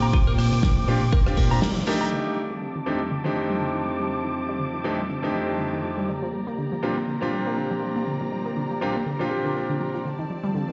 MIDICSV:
0, 0, Header, 1, 7, 480
1, 0, Start_track
1, 0, Tempo, 495868
1, 133, Time_signature, 4, 2, 24, 8
1, 10378, End_track
2, 0, Start_track
2, 0, Title_t, "Clean electric guitar"
2, 0, Program_c, 0, 27
2, 23, Note_on_c, 0, 82, 77
2, 57, Note_off_c, 0, 82, 0
2, 130, Note_on_c, 0, 65, 84
2, 172, Note_off_c, 0, 65, 0
2, 264, Note_on_c, 0, 70, 76
2, 319, Note_off_c, 0, 70, 0
2, 369, Note_on_c, 0, 72, 72
2, 438, Note_off_c, 0, 72, 0
2, 610, Note_on_c, 0, 70, 80
2, 679, Note_off_c, 0, 70, 0
2, 1089, Note_on_c, 0, 70, 83
2, 1158, Note_off_c, 0, 70, 0
2, 1330, Note_on_c, 0, 70, 77
2, 1432, Note_off_c, 0, 70, 0
2, 1464, Note_on_c, 0, 82, 100
2, 1545, Note_off_c, 0, 82, 0
2, 1569, Note_on_c, 0, 70, 83
2, 1638, Note_off_c, 0, 70, 0
2, 1812, Note_on_c, 0, 70, 78
2, 1879, Note_off_c, 0, 70, 0
2, 1945, Note_on_c, 0, 82, 80
2, 1978, Note_off_c, 0, 82, 0
2, 10378, End_track
3, 0, Start_track
3, 0, Title_t, "String section"
3, 0, Program_c, 1, 48
3, 0, Note_on_c, 1, 58, 83
3, 0, Note_on_c, 1, 65, 68
3, 0, Note_on_c, 1, 79, 68
3, 0, Note_on_c, 1, 86, 89
3, 2013, Note_off_c, 1, 79, 0
3, 2014, Note_off_c, 1, 65, 0
3, 2015, Note_off_c, 1, 58, 0
3, 2015, Note_off_c, 1, 86, 0
3, 2054, Note_on_c, 1, 67, 64
3, 2054, Note_on_c, 1, 81, 63
3, 2056, Note_on_c, 1, 53, 70
3, 2056, Note_on_c, 1, 86, 75
3, 2057, Note_on_c, 1, 60, 61
3, 5855, Note_off_c, 1, 81, 0
3, 5856, Note_off_c, 1, 53, 0
3, 5856, Note_off_c, 1, 60, 0
3, 5856, Note_off_c, 1, 86, 0
3, 5896, Note_on_c, 1, 82, 76
3, 5897, Note_on_c, 1, 58, 67
3, 5899, Note_on_c, 1, 74, 62
3, 9696, Note_off_c, 1, 82, 0
3, 9697, Note_off_c, 1, 58, 0
3, 9729, Note_on_c, 1, 53, 70
3, 9729, Note_on_c, 1, 60, 63
3, 9729, Note_on_c, 1, 81, 77
3, 10378, Note_off_c, 1, 53, 0
3, 10378, Note_off_c, 1, 60, 0
3, 10378, Note_off_c, 1, 67, 0
3, 10378, Note_off_c, 1, 74, 0
3, 10378, Note_off_c, 1, 81, 0
3, 10378, End_track
4, 0, Start_track
4, 0, Title_t, "Grand piano"
4, 0, Program_c, 2, 0
4, 0, Note_on_c, 2, 60, 81
4, 0, Note_on_c, 2, 62, 75
4, 0, Note_on_c, 2, 65, 70
4, 0, Note_on_c, 2, 67, 85
4, 822, Note_off_c, 2, 60, 0
4, 824, Note_off_c, 2, 62, 0
4, 828, Note_off_c, 2, 65, 0
4, 831, Note_off_c, 2, 67, 0
4, 848, Note_on_c, 2, 60, 82
4, 851, Note_on_c, 2, 62, 77
4, 854, Note_on_c, 2, 65, 76
4, 857, Note_on_c, 2, 67, 94
4, 961, Note_off_c, 2, 60, 0
4, 963, Note_off_c, 2, 62, 0
4, 965, Note_off_c, 2, 65, 0
4, 966, Note_off_c, 2, 67, 0
4, 1224, Note_on_c, 2, 60, 76
4, 1226, Note_on_c, 2, 62, 72
4, 1230, Note_on_c, 2, 65, 75
4, 1233, Note_on_c, 2, 67, 95
4, 1439, Note_off_c, 2, 60, 0
4, 1440, Note_off_c, 2, 62, 0
4, 1441, Note_off_c, 2, 65, 0
4, 1443, Note_off_c, 2, 67, 0
4, 1459, Note_on_c, 2, 60, 74
4, 1462, Note_on_c, 2, 62, 72
4, 1466, Note_on_c, 2, 65, 70
4, 1469, Note_on_c, 2, 67, 85
4, 1518, Note_off_c, 2, 60, 0
4, 1519, Note_off_c, 2, 62, 0
4, 1521, Note_off_c, 2, 65, 0
4, 1523, Note_off_c, 2, 67, 0
4, 1809, Note_on_c, 2, 57, 101
4, 1813, Note_on_c, 2, 62, 91
4, 1815, Note_on_c, 2, 63, 88
4, 1818, Note_on_c, 2, 67, 106
4, 2291, Note_off_c, 2, 57, 0
4, 2293, Note_off_c, 2, 62, 0
4, 2294, Note_off_c, 2, 63, 0
4, 2296, Note_off_c, 2, 67, 0
4, 2768, Note_on_c, 2, 41, 74
4, 2769, Note_on_c, 2, 57, 65
4, 2771, Note_on_c, 2, 60, 63
4, 2773, Note_on_c, 2, 62, 68
4, 2777, Note_on_c, 2, 63, 66
4, 2778, Note_on_c, 2, 67, 78
4, 2881, Note_off_c, 2, 41, 0
4, 2882, Note_off_c, 2, 57, 0
4, 2883, Note_off_c, 2, 60, 0
4, 2884, Note_off_c, 2, 62, 0
4, 2886, Note_off_c, 2, 63, 0
4, 2886, Note_off_c, 2, 67, 0
4, 3136, Note_on_c, 2, 41, 69
4, 3139, Note_on_c, 2, 57, 60
4, 3143, Note_on_c, 2, 60, 65
4, 3148, Note_on_c, 2, 62, 64
4, 3151, Note_on_c, 2, 63, 65
4, 3155, Note_on_c, 2, 67, 79
4, 4662, Note_off_c, 2, 41, 0
4, 4663, Note_off_c, 2, 57, 0
4, 4665, Note_off_c, 2, 60, 0
4, 4668, Note_off_c, 2, 62, 0
4, 4669, Note_off_c, 2, 63, 0
4, 4672, Note_off_c, 2, 67, 0
4, 4685, Note_on_c, 2, 41, 74
4, 4688, Note_on_c, 2, 57, 70
4, 4689, Note_on_c, 2, 60, 66
4, 4693, Note_on_c, 2, 62, 63
4, 4694, Note_on_c, 2, 63, 67
4, 4695, Note_on_c, 2, 67, 77
4, 4800, Note_off_c, 2, 41, 0
4, 4801, Note_off_c, 2, 57, 0
4, 4802, Note_off_c, 2, 60, 0
4, 4804, Note_off_c, 2, 62, 0
4, 4804, Note_off_c, 2, 63, 0
4, 4805, Note_off_c, 2, 67, 0
4, 5055, Note_on_c, 2, 41, 73
4, 5060, Note_on_c, 2, 57, 66
4, 5063, Note_on_c, 2, 60, 64
4, 5068, Note_on_c, 2, 62, 64
4, 5072, Note_on_c, 2, 63, 65
4, 5074, Note_on_c, 2, 67, 77
4, 5875, Note_off_c, 2, 41, 0
4, 5877, Note_off_c, 2, 57, 0
4, 5879, Note_off_c, 2, 60, 0
4, 5881, Note_off_c, 2, 62, 0
4, 5883, Note_off_c, 2, 63, 0
4, 5884, Note_off_c, 2, 67, 0
4, 6607, Note_on_c, 2, 46, 76
4, 6610, Note_on_c, 2, 60, 66
4, 6612, Note_on_c, 2, 62, 68
4, 6613, Note_on_c, 2, 65, 68
4, 6616, Note_on_c, 2, 67, 80
4, 6721, Note_off_c, 2, 46, 0
4, 6722, Note_off_c, 2, 60, 0
4, 6723, Note_off_c, 2, 62, 0
4, 6724, Note_off_c, 2, 65, 0
4, 6725, Note_off_c, 2, 67, 0
4, 6975, Note_on_c, 2, 46, 72
4, 6980, Note_on_c, 2, 60, 65
4, 6983, Note_on_c, 2, 62, 67
4, 6989, Note_on_c, 2, 65, 65
4, 6993, Note_on_c, 2, 67, 82
4, 8501, Note_off_c, 2, 46, 0
4, 8504, Note_off_c, 2, 60, 0
4, 8506, Note_off_c, 2, 62, 0
4, 8509, Note_off_c, 2, 65, 0
4, 8510, Note_off_c, 2, 67, 0
4, 8528, Note_on_c, 2, 46, 73
4, 8532, Note_on_c, 2, 60, 69
4, 8532, Note_on_c, 2, 62, 66
4, 8536, Note_on_c, 2, 65, 65
4, 8539, Note_on_c, 2, 67, 83
4, 8641, Note_off_c, 2, 46, 0
4, 8643, Note_off_c, 2, 60, 0
4, 8643, Note_off_c, 2, 62, 0
4, 8645, Note_off_c, 2, 65, 0
4, 8647, Note_off_c, 2, 67, 0
4, 8896, Note_on_c, 2, 46, 71
4, 8901, Note_on_c, 2, 60, 64
4, 8905, Note_on_c, 2, 62, 62
4, 8911, Note_on_c, 2, 65, 66
4, 8915, Note_on_c, 2, 67, 79
4, 9715, Note_off_c, 2, 46, 0
4, 9718, Note_off_c, 2, 60, 0
4, 9719, Note_off_c, 2, 62, 0
4, 9722, Note_off_c, 2, 65, 0
4, 9724, Note_off_c, 2, 67, 0
4, 10378, End_track
5, 0, Start_track
5, 0, Title_t, "Synth arpeggio sound"
5, 0, Program_c, 3, 84
5, 2052, Note_on_c, 3, 50, 75
5, 2115, Note_off_c, 3, 50, 0
5, 2186, Note_on_c, 3, 51, 90
5, 2216, Note_off_c, 3, 51, 0
5, 2291, Note_on_c, 3, 53, 69
5, 2355, Note_off_c, 3, 53, 0
5, 2425, Note_on_c, 3, 55, 92
5, 2500, Note_off_c, 3, 55, 0
5, 2530, Note_on_c, 3, 50, 82
5, 2569, Note_off_c, 3, 50, 0
5, 2666, Note_on_c, 3, 51, 93
5, 2696, Note_off_c, 3, 51, 0
5, 2772, Note_on_c, 3, 53, 73
5, 2867, Note_off_c, 3, 53, 0
5, 2905, Note_on_c, 3, 55, 95
5, 2956, Note_off_c, 3, 55, 0
5, 3011, Note_on_c, 3, 50, 76
5, 3075, Note_off_c, 3, 50, 0
5, 3146, Note_on_c, 3, 51, 90
5, 3176, Note_off_c, 3, 51, 0
5, 3251, Note_on_c, 3, 53, 74
5, 3315, Note_off_c, 3, 53, 0
5, 3384, Note_on_c, 3, 55, 90
5, 3460, Note_off_c, 3, 55, 0
5, 3492, Note_on_c, 3, 50, 74
5, 3530, Note_off_c, 3, 50, 0
5, 3624, Note_on_c, 3, 51, 98
5, 3655, Note_off_c, 3, 51, 0
5, 3729, Note_on_c, 3, 53, 70
5, 3825, Note_off_c, 3, 53, 0
5, 3865, Note_on_c, 3, 55, 88
5, 3916, Note_off_c, 3, 55, 0
5, 3971, Note_on_c, 3, 50, 79
5, 4035, Note_off_c, 3, 50, 0
5, 4105, Note_on_c, 3, 51, 96
5, 4136, Note_off_c, 3, 51, 0
5, 4212, Note_on_c, 3, 53, 71
5, 4276, Note_off_c, 3, 53, 0
5, 4345, Note_on_c, 3, 55, 94
5, 4420, Note_off_c, 3, 55, 0
5, 4449, Note_on_c, 3, 50, 77
5, 4489, Note_off_c, 3, 50, 0
5, 4584, Note_on_c, 3, 51, 100
5, 4616, Note_off_c, 3, 51, 0
5, 4691, Note_on_c, 3, 53, 72
5, 4786, Note_off_c, 3, 53, 0
5, 4827, Note_on_c, 3, 55, 96
5, 4876, Note_off_c, 3, 55, 0
5, 4934, Note_on_c, 3, 50, 80
5, 4996, Note_off_c, 3, 50, 0
5, 5066, Note_on_c, 3, 51, 96
5, 5096, Note_off_c, 3, 51, 0
5, 5175, Note_on_c, 3, 53, 72
5, 5237, Note_off_c, 3, 53, 0
5, 5310, Note_on_c, 3, 55, 94
5, 5383, Note_off_c, 3, 55, 0
5, 5413, Note_on_c, 3, 50, 71
5, 5451, Note_off_c, 3, 50, 0
5, 5548, Note_on_c, 3, 51, 98
5, 5577, Note_off_c, 3, 51, 0
5, 5655, Note_on_c, 3, 53, 65
5, 5748, Note_off_c, 3, 53, 0
5, 5787, Note_on_c, 3, 55, 93
5, 5837, Note_off_c, 3, 55, 0
5, 5894, Note_on_c, 3, 50, 81
5, 5956, Note_off_c, 3, 50, 0
5, 6025, Note_on_c, 3, 53, 99
5, 6056, Note_off_c, 3, 53, 0
5, 6132, Note_on_c, 3, 55, 70
5, 6195, Note_off_c, 3, 55, 0
5, 6263, Note_on_c, 3, 58, 98
5, 6340, Note_off_c, 3, 58, 0
5, 6372, Note_on_c, 3, 50, 82
5, 6410, Note_off_c, 3, 50, 0
5, 6505, Note_on_c, 3, 53, 92
5, 6536, Note_off_c, 3, 53, 0
5, 6610, Note_on_c, 3, 55, 73
5, 6706, Note_off_c, 3, 55, 0
5, 6746, Note_on_c, 3, 58, 95
5, 6797, Note_off_c, 3, 58, 0
5, 6852, Note_on_c, 3, 50, 76
5, 6915, Note_off_c, 3, 50, 0
5, 6987, Note_on_c, 3, 53, 99
5, 7017, Note_off_c, 3, 53, 0
5, 7094, Note_on_c, 3, 55, 71
5, 7156, Note_off_c, 3, 55, 0
5, 7226, Note_on_c, 3, 58, 99
5, 7301, Note_off_c, 3, 58, 0
5, 7330, Note_on_c, 3, 50, 74
5, 7369, Note_off_c, 3, 50, 0
5, 7463, Note_on_c, 3, 53, 98
5, 7495, Note_off_c, 3, 53, 0
5, 7572, Note_on_c, 3, 55, 73
5, 7667, Note_off_c, 3, 55, 0
5, 7704, Note_on_c, 3, 58, 93
5, 7755, Note_off_c, 3, 58, 0
5, 7814, Note_on_c, 3, 50, 76
5, 7876, Note_off_c, 3, 50, 0
5, 7945, Note_on_c, 3, 53, 93
5, 7976, Note_off_c, 3, 53, 0
5, 8054, Note_on_c, 3, 55, 72
5, 8116, Note_off_c, 3, 55, 0
5, 8186, Note_on_c, 3, 58, 98
5, 8261, Note_off_c, 3, 58, 0
5, 8293, Note_on_c, 3, 50, 79
5, 8331, Note_off_c, 3, 50, 0
5, 8427, Note_on_c, 3, 53, 96
5, 8457, Note_off_c, 3, 53, 0
5, 8532, Note_on_c, 3, 55, 74
5, 8627, Note_off_c, 3, 55, 0
5, 8665, Note_on_c, 3, 58, 94
5, 8716, Note_off_c, 3, 58, 0
5, 8771, Note_on_c, 3, 50, 79
5, 8835, Note_off_c, 3, 50, 0
5, 8906, Note_on_c, 3, 53, 94
5, 8936, Note_off_c, 3, 53, 0
5, 9011, Note_on_c, 3, 67, 75
5, 9075, Note_off_c, 3, 67, 0
5, 9145, Note_on_c, 3, 50, 73
5, 9196, Note_off_c, 3, 50, 0
5, 9251, Note_on_c, 3, 58, 68
5, 9290, Note_off_c, 3, 58, 0
5, 9384, Note_on_c, 3, 50, 77
5, 9415, Note_off_c, 3, 50, 0
5, 9490, Note_on_c, 3, 53, 71
5, 9586, Note_off_c, 3, 53, 0
5, 9624, Note_on_c, 3, 65, 69
5, 9700, Note_off_c, 3, 65, 0
5, 9730, Note_on_c, 3, 50, 81
5, 9795, Note_off_c, 3, 50, 0
5, 9863, Note_on_c, 3, 51, 91
5, 9895, Note_off_c, 3, 51, 0
5, 9970, Note_on_c, 3, 53, 71
5, 10034, Note_off_c, 3, 53, 0
5, 10101, Note_on_c, 3, 55, 100
5, 10179, Note_off_c, 3, 55, 0
5, 10206, Note_on_c, 3, 50, 83
5, 10247, Note_off_c, 3, 50, 0
5, 10340, Note_on_c, 3, 51, 92
5, 10374, Note_off_c, 3, 51, 0
5, 10378, End_track
6, 0, Start_track
6, 0, Title_t, "Picked electric bass"
6, 0, Program_c, 4, 34
6, 26, Note_on_c, 4, 46, 82
6, 113, Note_off_c, 4, 46, 0
6, 130, Note_on_c, 4, 34, 97
6, 331, Note_off_c, 4, 34, 0
6, 371, Note_on_c, 4, 46, 96
6, 481, Note_off_c, 4, 46, 0
6, 507, Note_on_c, 4, 46, 105
6, 593, Note_off_c, 4, 46, 0
6, 609, Note_on_c, 4, 34, 88
6, 720, Note_off_c, 4, 34, 0
6, 851, Note_on_c, 4, 46, 93
6, 961, Note_off_c, 4, 46, 0
6, 986, Note_on_c, 4, 46, 96
6, 1073, Note_off_c, 4, 46, 0
6, 1089, Note_on_c, 4, 34, 80
6, 1200, Note_off_c, 4, 34, 0
6, 1329, Note_on_c, 4, 46, 91
6, 1440, Note_off_c, 4, 46, 0
6, 1466, Note_on_c, 4, 46, 101
6, 1553, Note_off_c, 4, 46, 0
6, 10378, End_track
7, 0, Start_track
7, 0, Title_t, "Drums"
7, 129, Note_on_c, 9, 36, 111
7, 226, Note_off_c, 9, 36, 0
7, 374, Note_on_c, 9, 37, 76
7, 375, Note_on_c, 9, 46, 105
7, 471, Note_off_c, 9, 37, 0
7, 472, Note_off_c, 9, 46, 0
7, 511, Note_on_c, 9, 37, 66
7, 608, Note_off_c, 9, 37, 0
7, 609, Note_on_c, 9, 36, 115
7, 611, Note_on_c, 9, 38, 122
7, 706, Note_off_c, 9, 36, 0
7, 708, Note_off_c, 9, 38, 0
7, 851, Note_on_c, 9, 46, 96
7, 948, Note_off_c, 9, 46, 0
7, 1089, Note_on_c, 9, 36, 112
7, 1186, Note_off_c, 9, 36, 0
7, 1224, Note_on_c, 9, 37, 77
7, 1321, Note_off_c, 9, 37, 0
7, 1326, Note_on_c, 9, 46, 110
7, 1329, Note_on_c, 9, 36, 59
7, 1423, Note_off_c, 9, 46, 0
7, 1426, Note_off_c, 9, 36, 0
7, 1569, Note_on_c, 9, 38, 121
7, 1666, Note_off_c, 9, 38, 0
7, 1805, Note_on_c, 9, 46, 109
7, 1902, Note_off_c, 9, 46, 0
7, 2045, Note_on_c, 9, 49, 76
7, 2142, Note_off_c, 9, 49, 0
7, 2185, Note_on_c, 9, 82, 41
7, 2282, Note_off_c, 9, 82, 0
7, 2431, Note_on_c, 9, 82, 67
7, 2528, Note_off_c, 9, 82, 0
7, 2537, Note_on_c, 9, 82, 59
7, 2634, Note_off_c, 9, 82, 0
7, 2675, Note_on_c, 9, 82, 51
7, 2772, Note_off_c, 9, 82, 0
7, 2915, Note_on_c, 9, 82, 76
7, 3012, Note_off_c, 9, 82, 0
7, 3017, Note_on_c, 9, 82, 59
7, 3114, Note_off_c, 9, 82, 0
7, 3393, Note_on_c, 9, 82, 62
7, 3490, Note_off_c, 9, 82, 0
7, 3501, Note_on_c, 9, 82, 57
7, 3598, Note_off_c, 9, 82, 0
7, 3634, Note_on_c, 9, 82, 47
7, 3730, Note_off_c, 9, 82, 0
7, 3875, Note_on_c, 9, 82, 65
7, 3972, Note_off_c, 9, 82, 0
7, 3978, Note_on_c, 9, 82, 65
7, 4075, Note_off_c, 9, 82, 0
7, 4114, Note_on_c, 9, 82, 45
7, 4211, Note_off_c, 9, 82, 0
7, 4353, Note_on_c, 9, 82, 65
7, 4450, Note_off_c, 9, 82, 0
7, 4457, Note_on_c, 9, 82, 58
7, 4554, Note_off_c, 9, 82, 0
7, 4590, Note_on_c, 9, 82, 47
7, 4687, Note_off_c, 9, 82, 0
7, 4829, Note_on_c, 9, 82, 62
7, 4925, Note_off_c, 9, 82, 0
7, 4938, Note_on_c, 9, 82, 64
7, 5034, Note_off_c, 9, 82, 0
7, 5060, Note_on_c, 9, 82, 47
7, 5157, Note_off_c, 9, 82, 0
7, 5316, Note_on_c, 9, 82, 71
7, 5412, Note_off_c, 9, 82, 0
7, 5414, Note_on_c, 9, 82, 57
7, 5511, Note_off_c, 9, 82, 0
7, 5551, Note_on_c, 9, 82, 47
7, 5648, Note_off_c, 9, 82, 0
7, 5801, Note_on_c, 9, 82, 61
7, 5898, Note_off_c, 9, 82, 0
7, 5903, Note_on_c, 9, 82, 60
7, 5999, Note_off_c, 9, 82, 0
7, 6038, Note_on_c, 9, 82, 44
7, 6135, Note_off_c, 9, 82, 0
7, 6273, Note_on_c, 9, 82, 58
7, 6370, Note_off_c, 9, 82, 0
7, 6373, Note_on_c, 9, 82, 60
7, 6470, Note_off_c, 9, 82, 0
7, 6516, Note_on_c, 9, 82, 44
7, 6613, Note_off_c, 9, 82, 0
7, 6749, Note_on_c, 9, 82, 62
7, 6846, Note_off_c, 9, 82, 0
7, 6857, Note_on_c, 9, 82, 60
7, 6954, Note_off_c, 9, 82, 0
7, 7230, Note_on_c, 9, 82, 66
7, 7327, Note_off_c, 9, 82, 0
7, 7340, Note_on_c, 9, 82, 62
7, 7437, Note_off_c, 9, 82, 0
7, 7474, Note_on_c, 9, 82, 44
7, 7571, Note_off_c, 9, 82, 0
7, 7713, Note_on_c, 9, 82, 67
7, 7810, Note_off_c, 9, 82, 0
7, 7820, Note_on_c, 9, 82, 55
7, 7917, Note_off_c, 9, 82, 0
7, 7959, Note_on_c, 9, 82, 43
7, 8056, Note_off_c, 9, 82, 0
7, 8195, Note_on_c, 9, 82, 64
7, 8292, Note_off_c, 9, 82, 0
7, 8295, Note_on_c, 9, 82, 68
7, 8392, Note_off_c, 9, 82, 0
7, 8432, Note_on_c, 9, 82, 43
7, 8529, Note_off_c, 9, 82, 0
7, 8670, Note_on_c, 9, 82, 73
7, 8766, Note_off_c, 9, 82, 0
7, 8772, Note_on_c, 9, 82, 56
7, 8869, Note_off_c, 9, 82, 0
7, 8914, Note_on_c, 9, 82, 48
7, 9010, Note_off_c, 9, 82, 0
7, 9155, Note_on_c, 9, 82, 64
7, 9252, Note_off_c, 9, 82, 0
7, 9262, Note_on_c, 9, 82, 62
7, 9358, Note_off_c, 9, 82, 0
7, 9393, Note_on_c, 9, 82, 39
7, 9489, Note_off_c, 9, 82, 0
7, 9631, Note_on_c, 9, 82, 69
7, 9728, Note_off_c, 9, 82, 0
7, 9743, Note_on_c, 9, 82, 60
7, 9840, Note_off_c, 9, 82, 0
7, 9873, Note_on_c, 9, 82, 41
7, 9970, Note_off_c, 9, 82, 0
7, 10113, Note_on_c, 9, 82, 59
7, 10210, Note_off_c, 9, 82, 0
7, 10218, Note_on_c, 9, 82, 64
7, 10315, Note_off_c, 9, 82, 0
7, 10378, End_track
0, 0, End_of_file